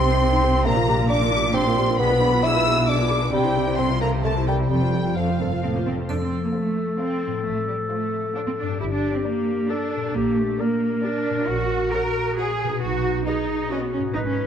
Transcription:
Already playing: double bass section C2, cello section C3, harp C3 G3 C4 D#4, bassoon C4, violin section C6
0.00 viola section C4, harp G4
0.10 viola section D#4 C5
0.20 viola section C4 G4, harp C5
0.32 viola section D#4 C5
0.44 viola section C4 G4, harp G4
0.55 viola section D#4 C5
0.65 double bass section A#1, harp A#2, cello section A#2, bassoon A#3, viola section D4 G4, violin section A#5
0.76 viola section F4 A#4
0.87 harp G3, viola section D4 G4
0.98 viola section F4 A#4
1.10 bassoon D4, viola section D4 G4, harp D4, violin section D6
1.21 viola section F4 A#4
1.32 viola section D4 G4, harp F4
1.44 viola section F4 A#4
1.54 bassoon C4, viola section D4 G4, harp G4, violin section C6
1.67 viola section F4 A#4
1.77 viola section D4 G4, harp F4
1.89 viola section F4 A#4
1.99 double bass section B1, harp B2, cello section B2, bassoon B3, viola section D4 G#4, violin section B5
2.10 viola section F4 B4
2.21 harp G#3, viola section D4 G#4
2.33 viola section F4 B4
2.43 harp D4, viola section D4 G#4, bassoon E4, violin section E6
2.55 viola section F4 B4
2.66 viola section D4 G#4, harp F4
2.78 viola section F4 B4
2.88 bassoon D4, viola section D4 G#4, harp G#4, violin section D6
3.00 viola section F4 B4
3.11 viola section D4 G#4, harp F4
3.22 viola section F4 B4
3.33 double bass section C2, cello section C3, harp C3, bassoon G3, viola section C4 G4, violin section G5
3.45 viola section E4 C5
3.56 harp C4 E4, viola section C4 G4
3.67 viola section E4 C5
3.79 harp C3, bassoon C4, viola section C4 A4, violin section C6
3.90 viola section F4 C5
4.01 bassoon A#3, viola section C4 A4, harp C4 F4, violin section A#5
4.13 viola section F4 C5
4.24 harp C3, bassoon A3, viola section G4 A#4, violin section A5
4.36 viola section E4 C5
4.47 bassoon G3, harp C4 E4, viola section G4 A#4, violin section G5
4.58 viola section E4 C5
4.70 double bass section F1, cello section F2, harp F3, bassoon G3, viola section C4 A4, violin section G5
4.82 viola section F4 C5
4.94 viola section C4 A4, harp C4
5.05 viola section F4 C5
5.16 cello section F2, bassoon F3, viola section C4 A4, harp F4, violin section F5
5.29 viola section F4 C5
5.40 cello section G2, viola section C4 A4, harp A4
5.52 viola section F4 C5
5.63 cello section A2 C4, viola section C4 A4, harp C5
5.75 cello section A#3, viola section F4 C5
5.86 cello section F2 C4, viola section C4 A4, harp A4
5.91 harp F3
5.96 harp A3, viola section F4 C5
6.00 harp C4
6.05 harp F4
6.09 double bass section F2, cello section D4, clarinet A4, triangle
6.21 cello section C4
6.43 cello section A#3
6.54 cello section A3, viola section A4, violin section C5 F5
6.99 cello section C4, viola section A4, violin section C5 F5
7.26 harp A2
7.31 harp A3
7.35 harp C4
7.40 harp F4
7.45 double bass section A1, cello section A3
7.68 cello section G3
7.90 cello section A3, viola section F4, violin section C5 F5
8.35 cello section D4, viola section F4, violin section C5 F5
8.47 cello section C4
8.57 cello section D4
8.61 harp G2
8.66 harp D4
8.71 harp G4
8.80 double bass section G1, cello section E4, clarinet G4
8.92 cello section D4
9.14 cello section C4
9.25 cello section A#3, viola section G4, violin section A#4 D5
9.69 cello section D4, viola section G4, clarinet A4, violin section A#4 D5
9.96 harp A#2
10.01 harp D4
10.06 harp G4
10.15 double bass section A#1, cello section A#3, clarinet G4
10.37 cello section A3
10.59 cello section A#3, viola section G4, violin section A#4 D5, clarinet A#4
11.04 cello section D4, viola section G4, violin section A#4 D5
11.30 harp A#2
11.35 harp C#4
11.39 harp F#4
11.48 double bass section A#1, cello section F#4
11.93 viola section F#4, clarinet F#4, cello section A#4, violin section C#5 F#5
12.37 viola section F#4, cello section G#4, violin section C#5 F#5
12.64 harp B2
12.68 harp D#4
12.73 harp F#4
12.77 harp B4
12.82 double bass section B1, clarinet D#4, cello section F#4
13.26 cello section D#4, viola section F#4, clarinet G#4, violin section B4 D#5
13.70 cello section C#4, clarinet F#4, viola section F#4, violin section B4 D#5
13.82 cello section B3
13.92 cello section C#4
13.97 harp G#2
14.02 harp D#4
14.06 harp G#4
14.11 cello section D#4, harp B4
14.15 double bass section G#1, clarinet B4
14.26 cello section C#4

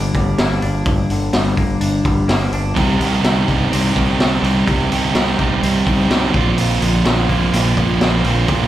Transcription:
Already playing: fingered electric bass G1, clean electric guitar G2 D3 G3 A#3 D4
0.14 fingered electric bass G1, clean electric guitar G3, kick, open hi-hat
0.38 fingered electric bass G1, clean electric guitar A#3, snare, open hi-hat
0.62 fingered electric bass G1, clean electric guitar D4, open hi-hat
0.86 fingered electric bass G1, clean electric guitar G2, kick, open hi-hat
1.10 fingered electric bass G1, clean electric guitar D3, open hi-hat
1.33 fingered electric bass G1, clean electric guitar G3, snare, open hi-hat
1.57 fingered electric bass G1, clean electric guitar A#3, kick, open hi-hat
1.80 fingered electric bass G1, clean electric guitar D4, open hi-hat
2.04 fingered electric bass G1, clean electric guitar G3, kick, open hi-hat
2.28 fingered electric bass G1, clean electric guitar A#3, snare, open hi-hat
2.52 fingered electric bass G1, clean electric guitar D4, open hi-hat
2.75 fingered electric bass C2, distorted electric guitar C3 G3 C4 D#4 G4, clean electric guitar C3, kick, open hi-hat
2.99 fingered electric bass C2, distorted electric guitar C3 G3 C4 D#4 G4, clean electric guitar D#3, open hi-hat
3.23 fingered electric bass C2, distorted electric guitar C3 G3 C4 D#4 G4, clean electric guitar D#3, snare, open hi-hat
3.47 fingered electric bass C2, distorted electric guitar C3 G3 C4 D#4 G4, clean electric guitar G3, kick, open hi-hat
3.70 fingered electric bass C2, distorted electric guitar C3 G3 C4 D#4 G4, clean electric guitar C4, open hi-hat
3.95 fingered electric bass C2, distorted electric guitar C3 G3 C4 D#4 G4, clean electric guitar D#3, kick, open hi-hat
4.18 fingered electric bass C2, distorted electric guitar C3 G3 C4 D#4 G4, clean electric guitar G3, snare, open hi-hat
4.42 fingered electric bass C2, distorted electric guitar C3 G3 C4 D#4 G4, clean electric guitar C4, open hi-hat
4.66 fingered electric bass C2, distorted electric guitar C3 G3 C4 D#4 G4, clean electric guitar C3, kick, open hi-hat
4.90 fingered electric bass C2, distorted electric guitar C3 G3 C4 D#4 G4, clean electric guitar D#3, open hi-hat
5.14 fingered electric bass C2, distorted electric guitar C3 G3 C4 D#4 G4, clean electric guitar D#3, snare, open hi-hat
5.38 fingered electric bass C2, distorted electric guitar C3 G3 C4 D#4 G4, clean electric guitar G3, kick, open hi-hat
5.62 fingered electric bass C2, distorted electric guitar C3 G3 C4 D#4 G4, clean electric guitar C4, open hi-hat
5.86 fingered electric bass C2, distorted electric guitar C3 G3 C4 D#4 G4, clean electric guitar D#3, kick, open hi-hat
6.10 fingered electric bass C2, distorted electric guitar C3 G3 C4 D#4 G4, clean electric guitar G3, snare, open hi-hat
6.34 fingered electric bass A#1, distorted electric guitar A#2 F3 A#3 C4 F4, clean electric guitar A#2, kick, open hi-hat
6.57 fingered electric bass A#1, distorted electric guitar A#2 F3 A#3 C4 F4, clean electric guitar A#2, open hi-hat
6.81 fingered electric bass A#1, distorted electric guitar A#2 F3 A#3 C4 F4, clean electric guitar F3, open hi-hat
7.05 fingered electric bass A#1, distorted electric guitar A#2 F3 A#3 C4 F4, clean electric guitar F3, snare, open hi-hat
7.29 fingered electric bass A#1, distorted electric guitar A#2 F3 A#3 C4 F4, clean electric guitar A#3, kick, open hi-hat
7.53 fingered electric bass A#1, distorted electric guitar A#2 F3 A#3 C4 F4, clean electric guitar C4, open hi-hat
7.77 fingered electric bass A#1, distorted electric guitar A#2 F3 A#3 C4 F4, clean electric guitar F3, kick, open hi-hat
8.00 fingered electric bass A#1, distorted electric guitar A#2 F3 A#3 C4 F4, clean electric guitar A#3, snare, open hi-hat
8.23 fingered electric bass A#1, distorted electric guitar A#2 F3 A#3 C4 F4, clean electric guitar C4, open hi-hat
8.47 fingered electric bass A#1, distorted electric guitar A#2 F3 A#3 C4 F4, clean electric guitar A#2, kick, open hi-hat

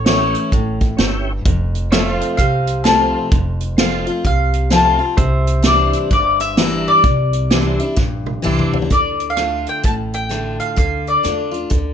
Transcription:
Already playing: upright bass A1, steel-string acoustic guitar A2, pedal steel guitar C#5 E5
0.05 steel-string acoustic guitar E3 A3 C#4 E4, tonewheel organ C#4 E4 G4, mandolin C#5, snare, closed hi-hat
0.35 closed hi-hat
0.52 upright bass A1, steel-string acoustic guitar A2, kick, closed hi-hat
0.81 kick, closed hi-hat
0.97 upright bass G1, steel-string acoustic guitar G2, tonewheel organ C#4 E4 G4, snare, closed hi-hat
1.45 upright bass F1, steel-string acoustic guitar F2, kick, closed hi-hat
1.75 closed hi-hat
1.91 steel-string acoustic guitar F3 A3 C4 F4, tonewheel organ C4 F4 A4, pedal steel guitar C#5 E5, mandolin F5, snare, closed hi-hat
2.12 pedal steel guitar C5 F5
2.21 closed hi-hat
2.37 upright bass C2, steel-string acoustic guitar C3, mandolin F5, kick, closed hi-hat
2.67 closed hi-hat
2.84 steel-string acoustic guitar F3 A3 C4 F4, tonewheel organ C4 F4 A4, mandolin A5, snare, closed hi-hat
3.31 upright bass F1, steel-string acoustic guitar F2, kick, closed hi-hat
3.61 closed hi-hat
3.77 steel-string acoustic guitar F3 A3 C4 F4, tonewheel organ C4 F4 A4, mandolin F5, snare, closed hi-hat
4.07 steel-string acoustic guitar C4 F4, closed hi-hat
4.24 upright bass C2, steel-string acoustic guitar C3, mandolin F5, kick, closed hi-hat
4.54 closed hi-hat
4.70 steel-string acoustic guitar F3 A3 C4 F4, tonewheel organ C4 F4 A4, mandolin A5, snare, closed hi-hat
4.99 steel-string acoustic guitar C4 F4
5.17 upright bass C2, steel-string acoustic guitar C3, pedal steel guitar C5 E5, kick, closed hi-hat
5.47 closed hi-hat
5.63 steel-string acoustic guitar E3 G3 D4 E4, tonewheel organ D4 E4 C5, mandolin D5, snare, closed hi-hat
5.93 closed hi-hat
6.11 upright bass G1, steel-string acoustic guitar G2, mandolin D5, kick, closed hi-hat
6.40 mandolin E5, closed hi-hat
6.57 steel-string acoustic guitar E3 G3 D4 E4, tonewheel organ D4 E4 A#4, snare, closed hi-hat
6.88 mandolin D5
7.04 upright bass C2, steel-string acoustic guitar C3, kick, closed hi-hat
7.33 closed hi-hat
7.50 steel-string acoustic guitar E3 G3 D4 E4, tonewheel organ D4 E4 C5, snare, closed hi-hat
7.80 steel-string acoustic guitar D4 E4, closed hi-hat
7.96 upright bass A#1, steel-string acoustic guitar G2, kick, snare
8.26 high tom
8.42 upright bass C2, steel-string acoustic guitar E3 G3 D4 E4, tonewheel organ D4 E4 C5, mid tom
8.59 mid tom
8.73 floor tom
8.82 floor tom
8.90 upright bass D2, steel-string acoustic guitar D3, mandolin D5, kick, closed hi-hat
9.20 closed hi-hat
9.30 mandolin F5
9.37 steel-string acoustic guitar D3 A3 D4 F4, cross-stick, closed hi-hat
9.67 mandolin G5, closed hi-hat
9.83 upright bass A1, steel-string acoustic guitar A2, mandolin A5, kick, closed hi-hat
10.13 mandolin G5, closed hi-hat
10.29 steel-string acoustic guitar D3 A3 D4 F4, cross-stick, closed hi-hat
10.60 mandolin F5, closed hi-hat
10.76 upright bass D2, steel-string acoustic guitar D3, mandolin F5, kick, closed hi-hat
11.07 mandolin D5, closed hi-hat
11.23 upright bass E2, steel-string acoustic guitar D3 A3 D4 F4, cross-stick, closed hi-hat
11.51 steel-string acoustic guitar D4 F4, closed hi-hat
11.70 upright bass D2, steel-string acoustic guitar D3, kick, closed hi-hat

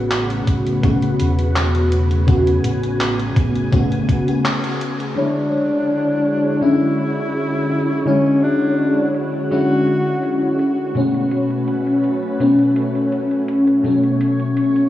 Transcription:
Already playing: fingered electric bass A1, fm electric piano C#3 A3 B3 F#4, string machine C#3 B4 F#5
0.11 clap, closed hi-hat
0.30 closed hi-hat
0.47 fingered electric bass A1, kick, closed hi-hat
0.66 closed hi-hat
0.83 fm electric piano C#3 A3 B3 F#4, kick, closed hi-hat
1.02 closed hi-hat
1.20 fingered electric bass E1, closed hi-hat
1.39 closed hi-hat
1.56 clap, closed hi-hat
1.75 closed hi-hat
1.92 string machine G#5, closed hi-hat
2.11 closed hi-hat
2.26 fm electric piano C#3 A3 B3 F#4, kick, closed hi-hat
2.47 closed hi-hat
2.64 fingered electric bass A1, closed hi-hat
2.84 closed hi-hat
3.01 clap, closed hi-hat
3.20 closed hi-hat
3.36 fingered electric bass A1, kick, closed hi-hat
3.55 closed hi-hat
3.72 fm electric piano C#3 A3 B3 F#4, kick, closed hi-hat
3.92 closed hi-hat
4.09 kick, closed hi-hat
4.26 fm electric piano C#3 A3 B3 F#4, closed hi-hat
4.45 clap, closed hi-hat
4.64 closed hi-hat
4.81 closed hi-hat
5.00 closed hi-hat
5.15 fm electric piano D3 F#3 G#3 E4 C#5, string machine D3 G#3 E4 F#4 C#5, alto saxophone D4, closed hi-hat
5.53 closed hi-hat
5.72 closed hi-hat
5.90 closed hi-hat
6.08 closed hi-hat
6.26 closed hi-hat
6.44 closed hi-hat
6.61 fm electric piano D3 F#3 G#3 C#4 E4, alto saxophone E4, closed hi-hat
6.81 closed hi-hat
6.98 closed hi-hat
7.17 closed hi-hat
7.34 closed hi-hat
7.53 closed hi-hat
7.70 closed hi-hat
7.89 closed hi-hat
8.05 fm electric piano D3 F#3 G#3 E4 C#5, alto saxophone C#4, closed hi-hat
8.25 closed hi-hat
8.43 alto saxophone D4, closed hi-hat
8.61 closed hi-hat
8.79 closed hi-hat
8.97 closed hi-hat
9.15 closed hi-hat
9.34 closed hi-hat
9.50 fm electric piano D3 F#3 G#3 C#4 E4, alto saxophone F#4, closed hi-hat
9.70 closed hi-hat
9.87 closed hi-hat
10.06 closed hi-hat
10.23 closed hi-hat
10.42 closed hi-hat
10.59 string machine A3 C#4 B4, closed hi-hat
10.78 closed hi-hat
10.94 fm electric piano B2 F#3 A3 C#4, closed hi-hat
11.14 closed hi-hat
11.31 closed hi-hat
11.50 closed hi-hat
11.68 closed hi-hat
11.87 closed hi-hat
12.04 closed hi-hat
12.23 closed hi-hat
12.39 fm electric piano B2 F#3 A3 C#4, closed hi-hat
12.59 closed hi-hat
12.76 closed hi-hat
12.95 closed hi-hat
13.12 closed hi-hat
13.31 closed hi-hat
13.48 string machine C#5, closed hi-hat
13.67 closed hi-hat
13.83 fm electric piano B2 F#3 A3 C#4, closed hi-hat
14.03 closed hi-hat
14.21 closed hi-hat
14.40 closed hi-hat
14.57 closed hi-hat
14.76 closed hi-hat

